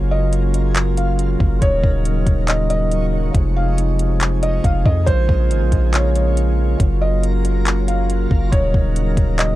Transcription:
Already playing: 808-style bass F#1, pipe organ C#3 F#3 A#3 F4, synth texture F#3 F4 A#4
0.11 felt piano D#5
0.33 closed hi-hat
0.54 closed hi-hat
0.75 clap, closed hi-hat
0.97 felt piano F5, closed hi-hat
1.19 closed hi-hat
1.40 808-style bass F#1, kick
1.62 808-style bass D#1, pipe organ C#3 D#4, synth texture D#4 C#5, felt piano C#5, kick, closed hi-hat
1.84 808-style bass D#1, kick
2.05 closed hi-hat
2.27 808-style bass D#1, kick, closed hi-hat
2.48 felt piano D#5, clap, closed hi-hat
2.70 felt piano D#5, closed hi-hat
2.92 closed hi-hat
3.35 808-style bass F1, pipe organ C3 F3 G#3, synth texture F3 G#4, kick, closed hi-hat
3.56 felt piano F5
3.78 closed hi-hat
3.99 closed hi-hat
4.21 clap, closed hi-hat
4.43 felt piano D#5, closed hi-hat
4.64 808-style bass F1, felt piano F5, kick, closed hi-hat
4.86 808-style bass F2, felt piano D#5, kick
5.06 808-style bass A#1, pipe organ C#3 A#3 F4, synth texture G#3 C#4 A#4, felt piano C5, kick, closed hi-hat
5.29 808-style bass A#1, kick
5.51 808-style bass G#1, closed hi-hat
5.61 808-style bass A#1
5.72 808-style bass A#1, kick, closed hi-hat
5.94 felt piano C#5, clap, closed hi-hat
6.15 felt piano C#5, closed hi-hat
6.37 closed hi-hat
6.80 808-style bass F#1, synth texture F#3 F4, pipe organ F#3, kick, closed hi-hat
7.02 felt piano D#5
7.23 closed hi-hat
7.45 closed hi-hat
7.66 clap, closed hi-hat
7.88 felt piano F5, closed hi-hat
8.10 closed hi-hat
8.31 808-style bass F#1, kick
8.52 808-style bass D#1, pipe organ F#3 A#3 D#4, synth texture F#3 D#4 C#5, felt piano C#5, kick, closed hi-hat
8.74 808-style bass D#1, kick
8.96 closed hi-hat
9.17 808-style bass D#1, kick, closed hi-hat
9.39 felt piano D#5, clap, closed hi-hat

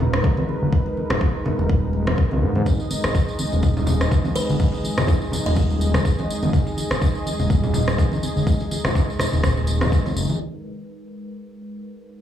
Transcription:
Already playing: analog synth bass D#1, analog synth pad G#3 D#4 A#4 B4
0.00 muted conga, high conga, low conga
0.14 cross-stick
0.24 kick, low conga
0.37 muted conga, high conga
0.49 high conga
0.62 analog synth bass G#1
0.72 analog synth bass G#1, kick
0.86 muted conga
0.97 high conga
1.10 analog synth bass G#1, cross-stick, low conga
1.21 kick, muted conga, low conga
1.45 high conga, low conga
1.59 analog synth bass D#1, muted conga
1.70 kick, high conga
1.93 muted conga
2.07 cross-stick, high conga, low conga
2.18 kick
2.31 analog synth bass C#2, muted conga, high conga
2.42 analog synth bass G#2
2.55 analog synth bass G#2, high conga
2.66 analog synth bass G#1, analog synth pad G#4 D#5, kick, tambourine
2.80 tambourine, muted conga
2.90 tambourine, high conga
3.04 analog synth bass G#1, cross-stick, tambourine
3.15 kick, tambourine, muted conga
3.28 tambourine
3.39 tambourine, high conga
3.52 analog synth bass D#1, tambourine, muted conga
3.63 kick, tambourine
3.77 tambourine, low conga
3.87 tambourine, muted conga, high conga, low conga
4.01 cross-stick, tambourine
4.11 kick, tambourine, low conga
4.24 tambourine, muted conga, high conga
4.35 kalimba B4, tambourine, high conga
4.49 analog synth bass G#1, tambourine
4.60 analog synth bass G#1, kick, tambourine
4.73 tambourine, muted conga
4.84 tambourine, high conga
4.98 analog synth bass G#1, cross-stick, tambourine, low conga
5.08 kick, tambourine, muted conga, low conga
5.22 tambourine
5.32 tambourine, high conga, low conga
5.46 analog synth bass D#1, kalimba D#5, tambourine, muted conga
5.55 kick, tambourine, high conga
5.70 tambourine
5.80 tambourine, muted conga
5.94 cross-stick, tambourine, high conga, low conga
6.05 kick, tambourine
6.18 tambourine, muted conga, high conga
6.30 tambourine
6.43 analog synth bass G#1, tambourine, high conga
6.53 analog synth bass G#1, kick, tambourine
6.67 tambourine, muted conga
6.77 tambourine, high conga
6.91 analog synth bass G#1, cross-stick, tambourine
7.02 kick, tambourine, muted conga
7.15 tambourine
7.26 tambourine, high conga
7.39 analog synth bass D#1, tambourine, muted conga
7.50 kick, tambourine
7.63 tambourine, low conga
7.74 tambourine, muted conga, high conga, low conga
7.88 cross-stick, tambourine
7.98 kick, tambourine, low conga
8.12 tambourine, muted conga, high conga
8.23 tambourine, high conga
8.36 analog synth bass G#1, tambourine
8.47 analog synth bass G#1, kick, tambourine
8.60 tambourine, muted conga
8.71 tambourine, high conga
8.85 analog synth bass G#1, cross-stick, tambourine, low conga
8.95 kick, tambourine, muted conga, low conga
9.10 tambourine
9.19 cross-stick, tambourine, high conga, low conga
9.32 analog synth bass D#1, tambourine, muted conga
9.43 kick, cross-stick, tambourine, high conga
9.57 tambourine
9.67 tambourine, muted conga
9.81 cross-stick, tambourine, high conga, low conga
9.92 kick, tambourine
10.06 tambourine, muted conga, high conga
10.16 analog synth bass F#1, tambourine
10.29 tambourine, high conga
10.40 analog synth pad G#3 D#4 A#4 B4, tambourine
10.54 tambourine
10.65 tambourine
10.78 tambourine
10.90 tambourine
11.02 tambourine
11.13 tambourine
11.27 tambourine
11.37 tambourine
11.51 tambourine
11.62 tambourine
11.75 tambourine
11.86 tambourine
11.99 tambourine
12.09 tambourine

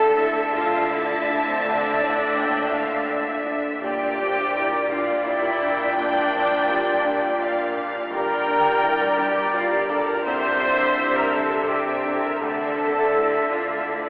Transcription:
Already playing: felt piano D2 D4, double bass section D2, cello section D3, french horn section A3 D4, viola section A4, clarinet D5, oboe E5, violin section E5, flute section A5
0.17 felt piano E4, violin section E5
0.54 felt piano D4, viola section F4, flute section F5, violin section A5
0.91 viola section E4, felt piano D5, flute section E5
1.29 felt piano D4
1.47 viola section C4, flute section C5
1.64 felt piano D2, viola section D4, flute section D5
2.01 felt piano A2
2.38 felt piano A#2, violin section G5
2.73 felt piano D4, violin section F5
3.09 felt piano D5, violin section E5
3.46 felt piano D4
3.81 double bass section A#1, cello section A#2, felt piano A#2, french horn section A#3 D4, viola section G4, oboe D5, clarinet D5, violin section D5, flute section G5
4.20 felt piano D4, violin section C5
4.55 felt piano E4, violin section A#4
4.89 felt piano D4, viola section F4, violin section D5, flute section F5
5.26 viola section E4, felt piano D5, flute section E5, violin section G5
5.62 felt piano D4
5.98 felt piano A#2, viola section D4, flute section D5
6.34 felt piano F3
6.69 felt piano G3
7.05 felt piano D4
7.40 felt piano D5, violin section F5
7.77 felt piano D4
8.11 double bass section G1, felt piano G2, cello section G2, french horn section G3, viola section A#4, violin section A#4 G5, clarinet D5, oboe D5, flute section A#5
8.15 french horn section D4
8.30 violin section D5
8.48 felt piano D4, violin section A#4
8.65 violin section D5
8.83 felt piano E4, violin section A#4
9.00 violin section D5
9.18 felt piano D4, viola section G4, violin section A#4, flute section G5
9.38 violin section D5
9.54 viola section F4, violin section A#4 D5, felt piano D5, flute section F5
9.72 viola section G4, violin section D5, flute section G5
9.89 felt piano D4, viola section A4, violin section A#4, flute section A5
10.07 viola section A#4, violin section D5, flute section A#5
10.24 double bass section C2, felt piano C2, cello section C3, french horn section D3, viola section C5, violin section D5 E5, clarinet D5, flute section C6
10.29 oboe E5
10.42 violin section E5
10.61 felt piano D4, violin section D5
10.78 violin section E5
10.96 felt piano E4, violin section D5
11.15 viola section A#4, violin section E5, flute section A#5
11.32 felt piano D4, viola section A4, violin section D5, flute section A5
11.51 violin section E5
11.68 viola section G4, clarinet D5, violin section D5 E5, felt piano E5, oboe E5, flute section G5
11.87 violin section E5
12.05 felt piano D4, violin section D5
12.23 viola section A#4, violin section E5, flute section A#5
12.40 felt piano D2, double bass section D2, cello section D3, french horn section D4, viola section A4, violin section D5, clarinet E5, oboe E5, flute section A5
12.61 violin section E5
12.77 felt piano D4, violin section C5 D5
12.97 violin section E5
13.13 felt piano E4, violin section D5
13.33 violin section E5
13.50 felt piano D4, viola section F4, violin section D5 E5, flute section F5
13.70 violin section E5
13.87 viola section E4, violin section D5, clarinet E5, felt piano E5, oboe E5, flute section E5

